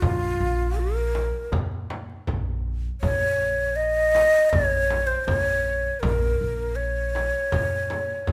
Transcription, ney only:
0.01 F4
0.79 A#4
3.01 C#5
3.76 D#5
4.50 C#5
5.07 C5
5.25 C#5
6.00 A#4
6.76 C#5

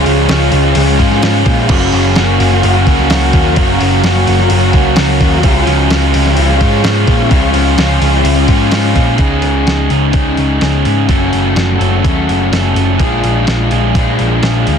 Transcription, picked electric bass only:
0.06 C#2
0.30 C#2
0.52 C#2
0.76 C#2
0.99 G#2
1.23 G#2
1.46 A#2
1.69 F#1
1.93 F#1
2.17 F#1
2.40 F#1
2.64 F#1
2.87 C#2
3.11 C#2
3.34 D#2
3.57 F#1
3.81 F#1
4.03 F#1
4.28 F#1
4.50 F#1
4.74 C#2
4.97 C#2
5.21 D#2
5.44 C#2
5.67 C#2
5.90 C#2
6.15 C#2
6.38 C#2
6.61 G#2
6.84 G#2
7.07 A#2
7.31 C#2
7.54 C#2
7.78 C#2
8.01 C#2
8.24 C#2
8.48 G#2
8.72 G#2
8.96 A#2
9.19 C#2
9.43 C#2
9.66 C#2
9.90 C#2
10.14 C#2
10.38 C#2
10.62 C#2
10.85 G#2
11.09 F#1
11.33 F#1
11.56 F#1
11.80 F#1
12.05 D#2
12.28 F#1
12.52 F#1
12.75 F#1
12.99 A#1
13.23 A#1
13.48 A#1
13.72 A#1
13.95 A#1
14.20 A#1
14.43 A#1
14.67 D2

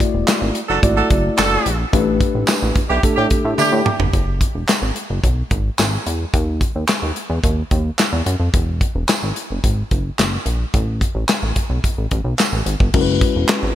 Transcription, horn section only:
0.69 F#3 D4 A4
0.96 F#3 D4 A4
1.37 F#3 D4 A4
2.89 E3 D4 G4
3.16 E3 D4 G4
3.58 E3 D4 G4

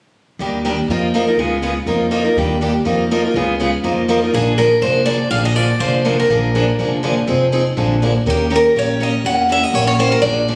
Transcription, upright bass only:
0.39 D#2
0.88 F2
1.37 C#2
1.86 F2
2.37 D#2
2.85 F2
3.34 C#2
3.84 F2
4.33 A#1
4.82 F1
5.30 A#1
5.80 F1
6.30 A#1
6.79 F1
7.28 F1
7.77 A#1
8.26 D#2
8.75 A#1
9.24 E2
9.74 A#1
10.23 A#1

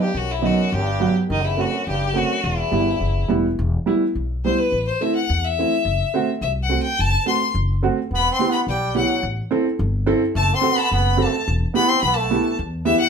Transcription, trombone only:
0.00 G2
0.15 F#2
0.38 G2
0.42 F#2
0.73 G2
1.29 D#3
1.42 E2
1.57 F#2
1.66 E2
1.71 F#2
1.87 G2
2.10 G2
2.16 F#2
2.44 E2
8.12 B3
8.32 C4
8.49 B3
8.69 G3
8.98 F#3
10.35 A3
10.54 C4
10.73 B3
10.83 B3
10.92 B3
11.21 A3
11.75 B3
11.89 C4
12.05 B3
12.18 A3

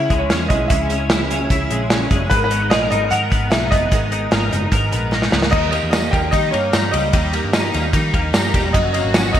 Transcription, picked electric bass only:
0.10 C#2
0.31 E2
0.50 B1
0.71 C#2
1.50 C#2
1.71 A#1
2.11 F#1
2.31 G#1
2.71 A#1
2.92 G#1
3.11 G#2
3.32 G#1
3.51 B1
3.72 F#1
3.92 G#1
4.32 G#1
4.52 F#1
4.72 G#1
4.93 A#1
5.33 C#2
5.53 D#2
5.83 E2
6.13 D#2
6.33 D#3
6.53 G2
6.74 G2
6.94 C#2
7.13 D#2
7.44 G2
7.74 D#2
7.94 D#3
8.14 D#2
8.34 G2
8.54 E1
8.74 F#1
9.04 G#1
9.35 F#1

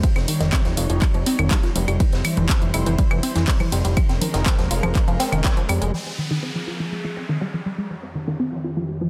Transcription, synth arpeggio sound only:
0.03 F3
0.16 C4
0.28 D#3
0.40 D#3
0.53 C4
0.65 F3
0.77 F4
0.90 F3
1.02 G3
1.14 F3
1.26 C4
1.39 D#3
1.51 G3
1.63 F3
1.76 G3
1.88 G3
2.00 E3
2.13 C4
2.25 E3
2.37 E3
2.49 C4
2.62 E3
2.74 E4
2.86 E3
2.98 G3
3.11 E3
3.23 C4
3.35 E3
3.48 G3
3.60 E3
3.72 G3
3.84 G3
3.97 F3
4.09 C4
4.21 D#3
4.34 D#3
4.46 C4
4.58 F3
4.71 F4
4.83 F3
4.95 G#3
5.08 F3
5.20 C4
5.32 D#3
5.44 G3
5.57 F3
5.69 G3
5.81 G#3
5.94 F3
6.06 C4
6.18 D#3
6.31 D#3
6.43 C4
6.55 F3
6.67 F4
6.80 F3
6.92 G#3
7.04 F3
7.17 C4
7.29 D#3
7.41 G3
7.54 F3
7.66 G3
7.78 G#3
7.90 F3
8.03 C4
8.15 D#3
8.27 D#3
8.40 C4
8.52 F3
8.64 F4
8.77 F3
8.89 G3
9.01 F3

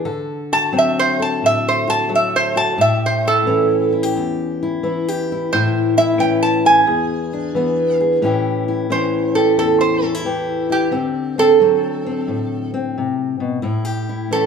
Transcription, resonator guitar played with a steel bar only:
0.53 A5
0.78 E5
0.99 C5
1.22 A5
1.46 E5
1.68 C5
1.90 A5
2.15 E5
2.36 C5
2.57 A5
2.81 E5
3.06 C5
3.28 A4
5.53 C5
5.98 E5
6.20 G5
6.43 A5
6.66 G#5
8.92 C5
9.35 A4
9.59 A4
9.81 C5
10.04 A4
10.72 G4
11.39 A4
14.33 A4

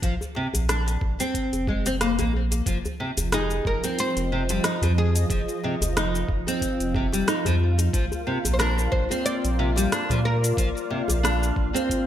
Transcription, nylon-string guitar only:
0.03 F3
0.36 C3
0.69 D4
1.20 C4
1.68 G#3
1.86 C4
2.01 A#3
2.19 A#3
2.67 F3
3.00 C3
3.33 D#4
3.84 C4
4.32 C3
4.50 G3
4.65 D#4
4.83 F3
5.30 F3
5.64 C3
5.97 D#4
6.48 C4
6.96 C3
7.13 G3
7.28 D#4
7.46 F3
7.94 F3
8.27 C3
8.61 D4
9.11 C4
9.59 C3
9.77 G3
9.92 D4
10.11 F3
10.58 F3
10.90 C3
11.23 D4
11.74 C4

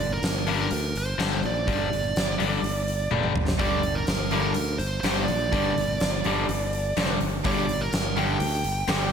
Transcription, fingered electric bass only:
Already playing: G1
0.22 G1
0.72 D2
0.96 G1
1.19 G1
1.44 A#1
1.67 G1
1.93 G1
2.17 G1
2.40 G1
2.63 G1
3.12 F1
3.35 G1
3.60 G1
4.08 G1
4.57 D2
4.79 G1
5.04 G1
5.29 A#1
5.52 G1
5.76 G1
6.02 G1
6.26 G1
6.49 G1
6.97 F1
7.21 G1
7.45 G1
7.93 G1
8.40 D2
8.65 G1
8.88 G1

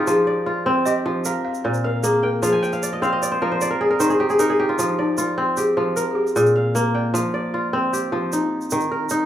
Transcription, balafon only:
0.08 G#4
0.67 C5
0.85 D#5
1.26 F5
1.45 F5
1.64 C5
1.84 A#4
2.04 G#4
2.23 A#4
2.42 G#4
5.00 D#4
5.19 F4
5.58 G#4
5.77 C5
5.96 A#4
6.11 G#4
6.15 G4
6.36 G#4
6.75 A#4
6.95 D5
7.14 F5

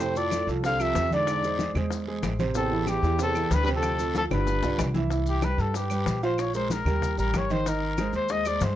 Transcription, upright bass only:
Already playing: F2
0.47 C2
0.95 E2
1.75 E2
2.22 A1
3.02 E2
3.51 D2
4.31 G1
4.63 B1
4.79 C2
5.58 G2
6.06 A#1
6.85 D#2
7.18 A1
7.33 G#1
8.13 D#2
8.61 G2

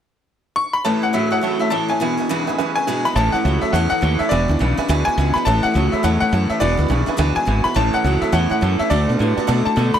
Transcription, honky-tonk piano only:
0.85 C#5 E5 A5
1.03 C#5 E5 A5
1.13 C#5 E5 B5
1.32 C#5 E5 A5
1.43 C#5 E5 A5
1.61 C#5 E5 A5
1.72 C#5 E5 A5
1.91 C#5 E5 A5
2.01 B4 E5 G#5
2.19 B4 E5 G#5
2.30 B4 E5 G#5
2.48 B4 E5 G#5
2.58 B4 E5 G#5
2.77 B4 E5 G#5
2.87 B4 E5 G#5
3.05 B4 E5 G#5
3.15 C#5 E5 A5
3.34 C#5 E5 A5
3.44 C#5 E5 A5
3.62 C#5 E5 A5
3.73 C#5 E5 A5
3.92 C#5 E5 A5
4.02 C#5 E5 A5
4.20 C#5 E5 A5
4.31 B4 E5 G#5
4.50 B4 E5 G#5
4.61 B4 E5 G#5
4.78 B4 E5 G#5
4.89 B4 E5 G#5
5.07 B4 E5 G#5
5.18 B4 E5 G#5
5.36 B4 E5 G#5
5.47 C#5 E5 A5
5.65 C#5 E5 A5
5.76 C#5 E5 A5
5.93 C#5 E5 B5
6.04 C#5 E5 A5
6.21 C#5 E5 A5
6.32 C#5 E5 A5
6.50 C#5 E5 A5
6.60 B4 E5 G#5
6.79 B4 E5 B5
6.90 B4 E5 G#5
7.08 B4 E5 G#5
7.19 B4 E5 G#5
7.37 B4 E5 G#5
7.48 B4 E5 G#5
7.65 B4 E5 G#5
7.76 C#5 E5 A5
7.95 C#5 E5 A5
8.04 C#5 E5 A5
8.22 C#5 E5 A5
8.33 C#5 E5 A5
8.50 C#5 E5 F#5
8.62 C#5 E5 A5
8.79 C#5 E5 A5
8.90 D5 F#5 A5
9.08 D5 F#5 A5
9.19 D5 F#5 A5
9.37 D5 F#5 A5
9.47 D5 F#5 A5
9.65 D5 F#5 A5
9.76 D5 F#5 A5
9.94 D5 F#5 B5

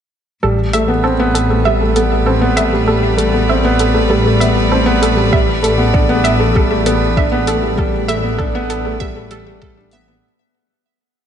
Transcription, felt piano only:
0.43 G3
0.74 A3
0.88 B3
1.04 C4
1.20 B3
1.50 A3
1.66 G3
1.81 A3
1.96 B3
2.26 C4
2.41 B3
2.57 A3
2.73 G3
2.88 G3
3.18 A3
3.33 B3
3.50 C4
3.64 B3
3.94 A3
4.10 G3
4.26 A3
4.41 B3
4.71 C4
4.86 B3
5.01 A3
5.16 G3
5.31 G3
5.63 A3
5.78 B3
5.94 D4
6.09 B3
6.40 A3
6.55 G3
6.71 A3
6.86 B3
7.17 D4
7.32 B3
7.47 A3
7.62 G3
7.77 G3
8.08 A3
8.24 B3
8.39 D4
8.55 B3
8.86 A3
9.01 G3
9.16 A3
9.31 G3
9.46 A3
9.62 G3
9.77 D4
9.93 B3
10.08 B3

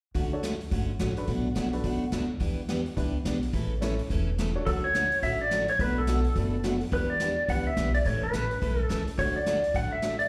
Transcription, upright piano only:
0.33 D4 F#4 A4 C#5
1.17 D4 F#4 A4 B4
1.73 D4 F#4 A4 B4
2.96 D4 E4 G4 B4
3.81 C#4 E4 A4 C#5
4.55 D4 F#4 A4 C#5

